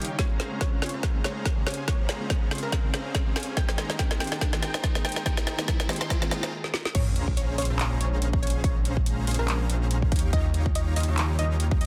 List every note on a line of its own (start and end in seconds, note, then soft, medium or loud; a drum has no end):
0.00 0.17 D#2 medium
0.00 0.15 C#3 medium
0.00 0.16 D#3 medium
0.00 0.15 G3 medium
0.00 0.16 G3 medium
0.00 0.17 A#3 medium
0.00 0.17 C#4 medium
0.00 0.17 D#4 medium
0.00 0.11 G4 medium
0.00 0.17 G4 medium
0.00 0.17 C#5 medium
0.00 0.17 F5 medium
0.00 0.17 G5 medium
0.00 closed hi-hat medium
0.00 riser medium
0.05 closed hi-hat medium
0.18 0.80 A#1 loud
0.18 0.48 C#3 medium
0.18 0.48 G#3 medium
0.18 3.53 G#3 medium
0.18 0.49 C4 medium
0.18 0.80 C#4 medium
0.18 3.54 C#4 medium
0.18 0.49 F4 medium
0.18 0.80 G#4 medium
0.18 0.57 C#5 loud
0.18 kick loud
0.18 snare medium
0.18 closed hi-hat medium
0.40 snare medium
0.40 closed hi-hat medium
0.50 0.79 C#3 medium
0.50 0.80 G#3 medium
0.50 0.80 A#3 medium
0.50 0.80 C4 medium
0.50 0.80 F4 medium
0.61 0.80 C#5 medium
0.61 kick medium
0.61 snare medium
0.61 closed hi-hat medium
0.81 0.91 A#1 loud
0.81 0.90 C#3 medium
0.81 0.90 G#3 medium
0.81 0.90 A#3 medium
0.81 0.91 C4 medium
0.81 0.91 C#4 medium
0.81 0.91 F4 loud
0.81 0.91 G#4 medium
0.81 0.91 C5 medium
0.81 1.21 C#5 loud
0.81 0.91 F5 medium
0.81 0.91 C6 medium
0.81 snare medium
0.81 closed hi-hat soft
0.86 closed hi-hat medium
0.89 closed hi-hat medium
0.94 1.22 A#1 medium
0.94 1.22 C#4 medium
0.94 1.22 G#4 medium
0.94 1.22 C5 medium
0.94 1.22 F5 medium
0.94 1.22 A#5 loud
1.03 kick medium
1.03 snare medium
1.03 closed hi-hat medium
1.14 1.25 C#3 medium
1.14 1.26 G#3 medium
1.14 1.26 A#3 medium
1.14 1.26 C4 medium
1.14 1.26 D#4 loud
1.24 1.65 A#1 loud
1.24 1.64 C#4 medium
1.24 1.64 G#4 medium
1.24 1.64 C5 medium
1.24 1.63 C#5 loud
1.24 1.64 F5 medium
1.24 1.64 A#5 medium
1.24 snare medium
1.24 closed hi-hat medium
1.45 kick medium
1.45 snare medium
1.45 closed hi-hat medium
1.56 1.85 C#3 medium
1.56 1.85 G#3 medium
1.56 1.86 A#3 medium
1.56 1.86 C4 medium
1.56 1.86 G4 medium
1.66 1.86 A#1 medium
1.66 1.86 C#4 medium
1.66 1.86 G#4 medium
1.66 1.86 C5 medium
1.66 1.86 C#5 medium
1.66 1.86 F5 medium
1.66 1.86 G#5 medium
1.66 snare medium
1.66 closed hi-hat soft
1.71 closed hi-hat medium
1.74 closed hi-hat medium
1.87 2.49 A#1 medium
1.87 2.17 C#3 medium
1.87 2.17 G#3 medium
1.87 2.18 A#3 medium
1.87 2.18 C4 medium
1.87 2.49 C#4 medium
1.87 2.18 F4 medium
1.87 2.49 G#4 medium
1.87 2.17 C#5 medium
1.87 kick loud
1.87 snare medium
1.87 closed hi-hat medium
2.09 snare medium
2.09 closed hi-hat medium
2.20 2.48 C#3 medium
2.20 2.49 G#3 medium
2.20 2.49 A#3 medium
2.20 2.49 C4 medium
2.20 2.49 F4 medium
2.30 kick loud
2.30 snare medium
2.30 closed hi-hat medium
2.50 2.61 A#1 medium
2.50 2.59 C#3 loud
2.50 2.59 G#3 medium
2.50 2.59 A#3 medium
2.50 2.60 C4 medium
2.50 2.60 C#4 medium
2.50 2.60 F4 loud
2.50 2.60 G#4 medium
2.50 2.60 C5 medium
2.50 2.60 F5 medium
2.50 2.60 C6 loud
2.50 snare medium
2.50 closed hi-hat soft
2.55 closed hi-hat medium
2.58 closed hi-hat medium
2.63 2.92 A#1 medium
2.63 2.91 C#4 medium
2.63 2.91 G#4 medium
2.63 3.49 A#4 medium
2.63 2.91 C5 medium
2.63 2.91 F5 medium
2.63 2.91 A#5 loud
2.72 kick medium
2.72 snare medium
2.72 closed hi-hat medium
2.83 2.94 C#3 loud
2.83 2.95 G#3 medium
2.83 2.95 A#3 medium
2.83 2.95 C4 medium
2.83 2.95 D#4 loud
2.93 3.34 A#1 loud
2.93 3.33 C#4 medium
2.93 3.33 G#4 medium
2.93 3.33 C5 medium
2.93 3.34 F5 medium
2.93 3.34 A#5 medium
2.93 snare medium
2.93 closed hi-hat medium
3.15 kick medium
3.15 snare medium
3.15 closed hi-hat medium
3.25 3.54 C#3 medium
3.25 3.54 G#3 medium
3.25 3.54 A#3 medium
3.25 3.55 C4 medium
3.25 3.55 G4 medium
3.35 3.58 A#1 medium
3.35 3.55 C#4 medium
3.35 3.55 G#4 medium
3.35 3.55 C5 medium
3.35 3.55 F5 medium
3.35 3.55 G#5 medium
3.35 snare medium
3.35 closed hi-hat soft
3.40 closed hi-hat medium
3.43 closed hi-hat medium
3.56 4.18 G#1 loud
3.56 3.86 D#3 medium
3.56 3.87 G#3 medium
3.56 3.87 A#3 medium
3.56 6.50 A#3 medium
3.56 3.87 C4 medium
3.56 3.87 G4 medium
3.56 6.50 G5 loud
3.56 3.95 G5 loud
3.56 kick loud
3.56 snare medium
3.56 closed hi-hat medium
3.69 snare medium
3.78 snare medium
3.78 closed hi-hat medium
3.88 4.17 D#3 medium
3.88 4.18 G#3 medium
3.88 4.18 A#3 medium
3.88 4.18 C4 medium
3.88 4.18 G4 medium
3.88 snare medium
3.99 4.18 G5 medium
3.99 kick loud
3.99 snare medium
3.99 closed hi-hat medium
4.11 snare medium
4.19 4.28 D#3 medium
4.19 4.28 G#3 medium
4.19 4.28 A#3 medium
4.19 4.29 C4 medium
4.19 4.29 D#4 medium
4.19 4.29 G4 loud
4.19 4.29 G#4 medium
4.19 4.29 C5 medium
4.19 4.59 G5 loud
4.19 4.29 G5 medium
4.19 4.29 C6 loud
4.19 snare loud
4.19 closed hi-hat soft
4.24 closed hi-hat medium
4.27 closed hi-hat medium
4.32 4.60 D#4 medium
4.32 4.60 G#4 medium
4.32 4.60 C5 medium
4.32 4.60 G5 medium
4.32 4.60 A#5 loud
4.32 snare medium
4.41 kick medium
4.41 snare medium
4.41 closed hi-hat medium
4.52 4.63 D#3 loud
4.52 4.64 G#3 medium
4.52 4.64 A#3 medium
4.52 4.64 C4 medium
4.52 4.64 F4 loud
4.52 snare medium
4.63 5.03 D#4 medium
4.63 5.03 G#4 medium
4.63 5.03 C5 medium
4.63 5.03 G5 medium
4.63 5.01 G5 loud
4.63 5.03 A#5 loud
4.63 snare medium
4.63 closed hi-hat medium
4.74 snare medium
4.84 kick loud
4.84 snare loud
4.84 closed hi-hat medium
4.94 5.23 D#3 medium
4.94 5.23 G#3 medium
4.94 5.24 A#3 medium
4.94 5.24 C4 medium
4.94 5.24 G#4 medium
4.94 snare medium
5.05 5.24 G#1 loud
5.05 5.24 D#4 medium
5.05 5.24 G#4 medium
5.05 5.24 C5 medium
5.05 5.24 G5 medium
5.05 5.24 A#5 medium
5.05 snare loud
5.05 closed hi-hat soft
5.09 closed hi-hat medium
5.12 closed hi-hat medium
5.16 snare medium
5.25 5.87 G#1 loud
5.25 5.55 D#3 medium
5.25 5.56 G#3 medium
5.25 5.56 A#3 medium
5.25 5.87 D#4 medium
5.25 5.56 G4 medium
5.25 5.87 G#4 medium
5.25 5.55 G5 loud
5.25 kick loud
5.25 snare loud
5.25 closed hi-hat medium
5.37 snare medium
5.47 snare loud
5.47 closed hi-hat medium
5.58 5.86 D#3 medium
5.58 5.87 G#3 medium
5.58 5.87 A#3 medium
5.58 5.87 C4 medium
5.58 5.87 G4 medium
5.58 snare medium
5.68 kick loud
5.68 snare loud
5.68 closed hi-hat medium
5.80 snare medium
5.88 5.97 D#3 loud
5.88 5.97 G#3 medium
5.88 5.97 A#3 medium
5.88 5.98 C4 medium
5.88 5.98 D#4 medium
5.88 5.98 G4 loud
5.88 5.98 G#4 medium
5.88 5.98 C5 medium
5.88 5.98 G5 medium
5.88 5.98 C6 loud
5.88 snare loud
5.88 closed hi-hat medium
5.93 closed hi-hat medium
5.96 closed hi-hat medium
6.01 6.29 D#4 loud
6.01 6.29 G#4 medium
6.01 6.29 C5 medium
6.01 6.29 G5 medium
6.01 6.29 A#5 loud
6.01 6.52 C6 loud
6.01 snare loud
6.10 kick loud
6.10 snare loud
6.10 closed hi-hat medium
6.21 6.29 D#3 loud
6.21 6.29 G#3 medium
6.21 6.30 A#3 medium
6.21 6.30 C4 medium
6.21 6.30 F4 loud
6.21 snare loud
6.30 6.39 D#3 loud
6.30 6.39 G#3 medium
6.30 6.40 A#3 medium
6.30 6.40 C4 medium
6.30 6.53 D#4 medium
6.30 6.53 G#4 medium
6.30 6.40 G#4 loud
6.30 6.53 C5 medium
6.30 6.53 G5 medium
6.30 6.53 A#5 medium
6.30 snare loud
6.30 closed hi-hat medium
6.43 snare loud
6.64 snare soft
6.74 snare medium
6.85 snare medium
6.95 7.56 A#1 loud
6.95 10.09 G#3 medium
6.95 7.56 C#4 medium
6.95 10.09 C#4 loud
6.95 7.56 G#4 medium
6.95 7.56 C5 medium
6.95 7.33 C#5 loud
6.95 7.56 F5 medium
6.95 7.56 A#5 medium
6.95 kick loud
6.95 closed hi-hat medium
6.95 crash loud
6.95 sub drop medium
7.16 closed hi-hat medium
7.28 kick medium
7.37 7.56 C#5 medium
7.37 closed hi-hat medium
7.58 7.68 A#1 loud
7.58 7.67 C#4 medium
7.58 7.67 G#4 medium
7.58 7.67 C5 medium
7.58 7.97 C#5 loud
7.58 7.67 F5 medium
7.58 7.67 C6 loud
7.58 closed hi-hat medium
7.58 open hi-hat loud
7.65 closed hi-hat medium
7.70 7.99 A#1 loud
7.70 7.98 C#4 loud
7.70 7.98 G#4 medium
7.70 7.98 C5 medium
7.70 7.98 F5 medium
7.70 7.98 A#5 loud
7.79 clap loud
7.79 closed hi-hat medium
8.01 8.41 A#1 medium
8.01 8.41 C#4 medium
8.01 8.41 G#4 medium
8.01 8.41 C5 medium
8.01 8.39 C#5 loud
8.01 8.41 F5 medium
8.01 8.41 A#5 medium
8.01 closed hi-hat medium
8.22 closed hi-hat medium
8.33 kick loud
8.43 8.62 A#1 medium
8.43 8.62 C#4 medium
8.43 8.62 G#4 medium
8.43 8.62 C5 medium
8.43 8.62 C#5 medium
8.43 8.62 F5 medium
8.43 8.62 G#5 medium
8.43 closed hi-hat medium
8.47 closed hi-hat medium
8.50 closed hi-hat medium
8.64 9.25 A#1 loud
8.64 9.25 C#4 medium
8.64 9.25 G#4 medium
8.64 9.25 C5 medium
8.64 8.93 C#5 medium
8.64 9.25 F5 medium
8.64 9.25 A#5 medium
8.64 kick loud
8.64 closed hi-hat medium
8.85 closed hi-hat medium
8.97 kick medium
9.06 closed hi-hat medium
9.27 9.37 A#1 loud
9.27 9.36 C#4 medium
9.27 9.36 G#4 medium
9.27 9.36 C5 medium
9.27 9.36 F5 medium
9.27 9.36 C6 loud
9.27 closed hi-hat medium
9.27 open hi-hat loud
9.34 closed hi-hat medium
9.39 9.68 A#1 loud
9.39 9.67 C#4 medium
9.39 9.67 G#4 medium
9.39 10.25 A#4 medium
9.39 9.67 C5 medium
9.39 9.67 F5 medium
9.39 9.67 A#5 loud
9.48 clap loud
9.48 closed hi-hat medium
9.70 10.13 A#1 loud
9.70 10.10 C#4 medium
9.70 10.10 G#4 medium
9.70 10.10 C5 medium
9.70 10.10 F5 medium
9.70 10.10 A#5 medium
9.70 closed hi-hat medium
9.91 closed hi-hat medium
10.02 kick medium
10.12 10.31 D#2 loud
10.12 11.86 C#3 medium
10.12 11.86 G3 medium
10.12 10.31 D#4 medium
10.12 11.86 F4 loud
10.12 10.31 G4 medium
10.12 10.31 C#5 medium
10.12 10.31 F5 medium
10.12 10.31 G5 medium
10.12 kick loud
10.12 closed hi-hat medium
10.16 closed hi-hat medium
10.19 closed hi-hat medium
10.33 10.94 D#2 loud
10.33 10.94 D#4 medium
10.33 10.94 G4 medium
10.33 10.94 C#5 medium
10.33 10.71 D#5 loud
10.33 10.94 F5 medium
10.33 10.94 A#5 medium
10.33 kick loud
10.33 closed hi-hat medium
10.54 closed hi-hat medium
10.66 kick medium
10.75 10.95 D#5 medium
10.75 closed hi-hat medium
10.96 11.06 D#2 loud
10.96 11.05 D#4 medium
10.96 11.05 G4 medium
10.96 11.05 C#5 medium
10.96 11.35 D#5 medium
10.96 11.05 F5 medium
10.96 11.05 C6 loud
10.96 open hi-hat medium
11.00 closed hi-hat medium
11.03 closed hi-hat medium
11.08 11.37 D#2 loud
11.08 11.36 D#4 medium
11.08 11.36 G4 medium
11.08 11.36 C#5 medium
11.08 11.36 F5 medium
11.08 11.36 A#5 loud
11.18 clap loud
11.18 closed hi-hat medium
11.39 11.79 D#2 loud
11.39 11.79 D#4 medium
11.39 11.79 G4 medium
11.39 11.79 C#5 medium
11.39 11.77 D#5 loud
11.39 11.79 F5 medium
11.39 11.79 A#5 medium
11.39 closed hi-hat medium
11.60 closed hi-hat medium
11.71 kick loud
11.81 11.86 D#2 medium
11.81 11.86 D#4 medium
11.81 11.86 G4 medium
11.81 11.86 C#5 medium
11.81 11.86 D#5 medium
11.81 11.86 F5 medium
11.81 11.86 G5 medium
11.81 closed hi-hat medium